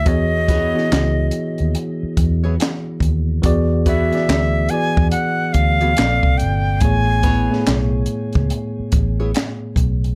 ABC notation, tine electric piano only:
X:1
M:4/4
L:1/16
Q:"Swing 16ths" 1/4=71
K:E
V:1 name="Tine electric piano"
[E,B,FGc]3 [E,B,EFG]6- [E,B,EFG] z6 | [E,B,FG=d]3 [E,B,FGd]3 [E,B,FGd]6 [^A,,^A,^B,=Ad]3 z | [A,,A,B,Gc]3 [A,,A,B,Gc]6- [A,,A,B,Gc] z6 |]